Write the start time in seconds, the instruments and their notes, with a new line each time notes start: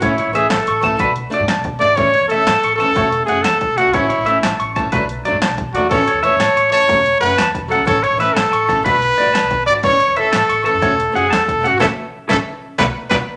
0.00 upright bass A1, steel-string acoustic guitar E3 A3 C#4, trumpet E4, clean electric guitar C#5, kick, closed hi-hat
0.18 clean electric guitar C#5, closed hi-hat
0.27 upright bass A1
0.33 steel-string acoustic guitar E3 A3 C#4, trumpet G#4, clean electric guitar E5, closed hi-hat
0.50 upright bass A1, trumpet A4, clean electric guitar A5, snare, closed hi-hat
0.67 upright bass A1, clean electric guitar C#6, closed hi-hat
0.81 steel-string acoustic guitar E3 A3 C#4, clean electric guitar A5, kick, closed hi-hat
0.92 upright bass A2
0.97 upright bass B1, steel-string acoustic guitar A3 D4 F#4, clean electric guitar B4, kick, closed hi-hat
1.08 upright bass B1
1.16 closed hi-hat
1.30 steel-string acoustic guitar A3 D4 F#4, clean electric guitar D5, closed hi-hat
1.40 upright bass G#2
1.48 clean electric guitar A5, snare, closed hi-hat
1.57 upright bass B1
1.64 kick, closed hi-hat
1.79 upright bass G#1, steel-string acoustic guitar A3 D4 F#4, trumpet D5, clean electric guitar D5, closed hi-hat
1.95 upright bass A1, steel-string acoustic guitar E3 A3 C#4, trumpet C#5, clean electric guitar C#5, kick, closed hi-hat
2.14 clean electric guitar C#5, closed hi-hat
2.21 upright bass E2
2.28 steel-string acoustic guitar A3, trumpet A4, clean electric guitar E5, muted steel-string acoustic guitar stroke, closed hi-hat
2.32 steel-string acoustic guitar C#4
2.46 upright bass A1, clean electric guitar A5, snare, closed hi-hat
2.63 upright bass A1, clean electric guitar C#6, closed hi-hat
2.76 steel-string acoustic guitar E3, trumpet A4, clean electric guitar A5, closed hi-hat
2.80 steel-string acoustic guitar A3 C#4
2.87 upright bass F#2
2.95 upright bass F#1, steel-string acoustic guitar A3 C#4 F#4, clean electric guitar C#5, kick, closed hi-hat
3.03 upright bass E1
3.12 closed hi-hat
3.25 upright bass F#1, steel-string acoustic guitar A3 C#4, trumpet G#4, clean electric guitar F#5, closed hi-hat
3.30 steel-string acoustic guitar F#4
3.42 upright bass E2, trumpet A4, clean electric guitar A5, snare, closed hi-hat
3.61 kick, closed hi-hat
3.70 upright bass E1
3.77 steel-string acoustic guitar A3 C#4, trumpet F#4, clean electric guitar F#5, closed hi-hat
3.81 steel-string acoustic guitar F#4
3.86 upright bass C#2
3.93 upright bass A1, steel-string acoustic guitar E3 A3 C#4, trumpet E4, clean electric guitar C#5, kick, closed hi-hat
4.09 clean electric guitar C#5, closed hi-hat
4.18 upright bass A1
4.25 steel-string acoustic guitar E3 A3 C#4, clean electric guitar E5, closed hi-hat
4.42 upright bass A1, clean electric guitar A5, snare, closed hi-hat
4.59 upright bass A1, clean electric guitar C#6, closed hi-hat
4.76 steel-string acoustic guitar E3 A3 C#4, clean electric guitar A5, kick, closed hi-hat
4.83 upright bass A1
4.92 upright bass B1, steel-string acoustic guitar F#3 A3 D4, clean electric guitar B4, kick, closed hi-hat
5.00 upright bass B1
5.09 closed hi-hat
5.25 steel-string acoustic guitar F#3 A3 D4, clean electric guitar D5, closed hi-hat
5.32 upright bass G#2
5.42 clean electric guitar A5, snare, closed hi-hat
5.47 upright bass B1
5.58 kick, closed hi-hat
5.72 upright bass E2, steel-string acoustic guitar F#3, trumpet F#4, clean electric guitar D5, closed hi-hat
5.77 steel-string acoustic guitar A3 D4
5.89 upright bass A1, steel-string acoustic guitar E3, trumpet A4, clean electric guitar C#5, muted steel-string acoustic guitar stroke, kick, closed hi-hat
5.94 steel-string acoustic guitar C#4
6.08 clean electric guitar C#5, closed hi-hat
6.13 upright bass E2
6.22 steel-string acoustic guitar E3 A3 C#4, trumpet C#5, clean electric guitar E5, closed hi-hat
6.37 upright bass A1, clean electric guitar A5, snare, closed hi-hat
6.54 upright bass A1, clean electric guitar C#6, closed hi-hat
6.70 steel-string acoustic guitar E3 A3 C#4, trumpet C#5, clean electric guitar A5, closed hi-hat
6.78 upright bass F#2
6.87 upright bass F#1, steel-string acoustic guitar F#3 A3 C#4, clean electric guitar C#5, kick, closed hi-hat
6.96 upright bass E1
7.06 closed hi-hat
7.20 upright bass F#1, steel-string acoustic guitar F#3 A3 C#4, trumpet B4, clean electric guitar F#5, closed hi-hat
7.36 upright bass E2, clean electric guitar A5, snare, closed hi-hat
7.55 kick, closed hi-hat
7.60 upright bass E1
7.68 steel-string acoustic guitar F#3 A3, trumpet A4, clean electric guitar F#5, closed hi-hat
7.72 steel-string acoustic guitar C#4
7.77 upright bass C#2
7.85 upright bass A1, steel-string acoustic guitar E3 A3 C#4, trumpet A4, clean electric guitar C#5, kick, closed hi-hat
8.03 trumpet C#5, clean electric guitar C#5, closed hi-hat
8.11 upright bass A1
8.18 steel-string acoustic guitar E3 A3 C#4, trumpet B4, clean electric guitar E5, closed hi-hat
8.34 upright bass A1, trumpet A4, clean electric guitar A5, snare, closed hi-hat
8.51 upright bass A1, clean electric guitar C#6, closed hi-hat
8.68 steel-string acoustic guitar E3 A3 C#4, clean electric guitar A5, kick, snare, closed hi-hat
8.76 upright bass A1
8.83 upright bass B1, steel-string acoustic guitar A3 D4 F#4, clean electric guitar B4, trumpet B4, kick, closed hi-hat
8.93 upright bass B1
9.02 closed hi-hat
9.18 steel-string acoustic guitar A3 D4 F#4, clean electric guitar D5, closed hi-hat
9.25 upright bass G#2
9.34 clean electric guitar A5, snare, closed hi-hat
9.41 upright bass B1
9.51 kick, closed hi-hat
9.66 upright bass G#1, steel-string acoustic guitar A3 D4, trumpet D5, clean electric guitar D5, closed hi-hat
9.70 steel-string acoustic guitar F#4
9.83 upright bass A1, steel-string acoustic guitar E3 A3 C#4, clean electric guitar C#5, trumpet C#5, kick, closed hi-hat
10.00 clean electric guitar C#5, closed hi-hat
10.08 upright bass E2
10.16 steel-string acoustic guitar E3 A3 C#4, trumpet A4, clean electric guitar E5, closed hi-hat
10.32 upright bass A1, clean electric guitar A5, snare, closed hi-hat
10.49 upright bass A1, clean electric guitar C#6, closed hi-hat
10.63 steel-string acoustic guitar E3 A3 C#4, trumpet A4, clean electric guitar A5, closed hi-hat
10.73 upright bass F#2
10.81 upright bass F#1, steel-string acoustic guitar A3 C#4 F#4, clean electric guitar C#5, kick, closed hi-hat
10.88 upright bass E1
11.00 closed hi-hat
11.12 upright bass F#1, steel-string acoustic guitar A3 C#4 F#4, trumpet G#4, clean electric guitar F#5
11.16 closed hi-hat
11.30 upright bass E2, trumpet A4, clean electric guitar A5, snare, closed hi-hat
11.48 kick, closed hi-hat
11.54 upright bass E1
11.60 steel-string acoustic guitar A3 C#4, clean electric guitar F#5
11.65 steel-string acoustic guitar F#4, trumpet F#4, closed hi-hat
11.71 upright bass G#1
11.79 upright bass A1, steel-string acoustic guitar E3 A3 C#4, trumpet A4, clean electric guitar C#5 E5 A5, kick, snare
12.29 upright bass A1, steel-string acoustic guitar E3 A3 C#4, trumpet A4, clean electric guitar C#5 E5 A5, kick, snare
12.78 upright bass B1, steel-string acoustic guitar F#3 A3 B3, trumpet B4, clean electric guitar B4 D5 F#5, kick, snare
13.10 upright bass B1, steel-string acoustic guitar F#3 A3 B3, trumpet B4, clean electric guitar B4 D5 F#5, kick, snare